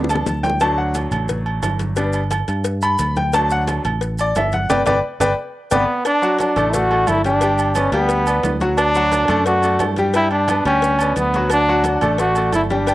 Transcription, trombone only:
0, 0, Header, 1, 2, 480
1, 0, Start_track
1, 0, Key_signature, 2, "major"
1, 0, Tempo, 340522
1, 858, Time_signature, 4, 2, 24, 8
1, 18247, End_track
2, 0, Start_track
2, 0, Title_t, "Trombone"
2, 0, Program_c, 0, 57
2, 8072, Note_on_c, 0, 59, 99
2, 8511, Note_off_c, 0, 59, 0
2, 8553, Note_on_c, 0, 62, 122
2, 8991, Note_off_c, 0, 62, 0
2, 9034, Note_on_c, 0, 62, 96
2, 9510, Note_on_c, 0, 66, 106
2, 9531, Note_off_c, 0, 62, 0
2, 9987, Note_on_c, 0, 64, 116
2, 10008, Note_off_c, 0, 66, 0
2, 10213, Note_off_c, 0, 64, 0
2, 10222, Note_on_c, 0, 62, 102
2, 10947, Note_on_c, 0, 61, 93
2, 10968, Note_off_c, 0, 62, 0
2, 11176, Note_off_c, 0, 61, 0
2, 11185, Note_on_c, 0, 59, 106
2, 12085, Note_off_c, 0, 59, 0
2, 12377, Note_on_c, 0, 62, 126
2, 13282, Note_off_c, 0, 62, 0
2, 13345, Note_on_c, 0, 66, 106
2, 13882, Note_off_c, 0, 66, 0
2, 14324, Note_on_c, 0, 64, 122
2, 14536, Note_off_c, 0, 64, 0
2, 14544, Note_on_c, 0, 62, 102
2, 14989, Note_off_c, 0, 62, 0
2, 15033, Note_on_c, 0, 61, 110
2, 15698, Note_off_c, 0, 61, 0
2, 15777, Note_on_c, 0, 59, 100
2, 16207, Note_off_c, 0, 59, 0
2, 16262, Note_on_c, 0, 62, 113
2, 16690, Note_off_c, 0, 62, 0
2, 16727, Note_on_c, 0, 62, 83
2, 17162, Note_off_c, 0, 62, 0
2, 17200, Note_on_c, 0, 66, 95
2, 17639, Note_off_c, 0, 66, 0
2, 17694, Note_on_c, 0, 64, 96
2, 17795, Note_off_c, 0, 64, 0
2, 17921, Note_on_c, 0, 62, 89
2, 18247, Note_off_c, 0, 62, 0
2, 18247, End_track
0, 0, End_of_file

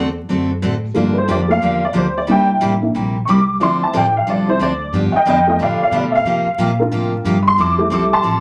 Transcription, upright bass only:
0, 0, Header, 1, 3, 480
1, 0, Start_track
1, 0, Tempo, 331492
1, 1381, Time_signature, 4, 2, 24, 8
1, 12166, End_track
2, 0, Start_track
2, 0, Title_t, "Upright bass"
2, 0, Program_c, 0, 32
2, 0, Note_on_c, 0, 40, 86
2, 402, Note_off_c, 0, 40, 0
2, 418, Note_on_c, 0, 42, 76
2, 886, Note_off_c, 0, 42, 0
2, 900, Note_on_c, 0, 45, 92
2, 1367, Note_off_c, 0, 45, 0
2, 1382, Note_on_c, 0, 43, 89
2, 1848, Note_off_c, 0, 43, 0
2, 1862, Note_on_c, 0, 41, 100
2, 2328, Note_off_c, 0, 41, 0
2, 2346, Note_on_c, 0, 40, 84
2, 2811, Note_off_c, 0, 40, 0
2, 2828, Note_on_c, 0, 38, 86
2, 3291, Note_off_c, 0, 38, 0
2, 3308, Note_on_c, 0, 36, 88
2, 3771, Note_off_c, 0, 36, 0
2, 3784, Note_on_c, 0, 33, 80
2, 4249, Note_off_c, 0, 33, 0
2, 4265, Note_on_c, 0, 34, 80
2, 4730, Note_off_c, 0, 34, 0
2, 4747, Note_on_c, 0, 36, 96
2, 5211, Note_off_c, 0, 36, 0
2, 5225, Note_on_c, 0, 38, 80
2, 5690, Note_off_c, 0, 38, 0
2, 5704, Note_on_c, 0, 33, 96
2, 6169, Note_off_c, 0, 33, 0
2, 6185, Note_on_c, 0, 36, 85
2, 6650, Note_off_c, 0, 36, 0
2, 6661, Note_on_c, 0, 38, 96
2, 7124, Note_off_c, 0, 38, 0
2, 7133, Note_on_c, 0, 43, 93
2, 7412, Note_off_c, 0, 43, 0
2, 7613, Note_on_c, 0, 41, 99
2, 8083, Note_off_c, 0, 41, 0
2, 8099, Note_on_c, 0, 45, 83
2, 8376, Note_off_c, 0, 45, 0
2, 8562, Note_on_c, 0, 47, 101
2, 9037, Note_off_c, 0, 47, 0
2, 9043, Note_on_c, 0, 48, 85
2, 9327, Note_off_c, 0, 48, 0
2, 9529, Note_on_c, 0, 46, 88
2, 10000, Note_off_c, 0, 46, 0
2, 10015, Note_on_c, 0, 45, 88
2, 10483, Note_off_c, 0, 45, 0
2, 10491, Note_on_c, 0, 43, 93
2, 10961, Note_off_c, 0, 43, 0
2, 10979, Note_on_c, 0, 41, 85
2, 11436, Note_off_c, 0, 41, 0
2, 11445, Note_on_c, 0, 36, 86
2, 11917, Note_off_c, 0, 36, 0
2, 11925, Note_on_c, 0, 33, 88
2, 12166, Note_off_c, 0, 33, 0
2, 12166, End_track
3, 0, Start_track
3, 0, Title_t, "Muted upright bass strokes"
3, 7428, Note_on_c, 9, 29, 44
3, 7573, Note_off_c, 9, 29, 0
3, 8397, Note_on_c, 9, 29, 44
3, 8542, Note_off_c, 9, 29, 0
3, 9345, Note_on_c, 9, 29, 38
3, 9490, Note_off_c, 9, 29, 0
3, 12166, End_track
0, 0, End_of_file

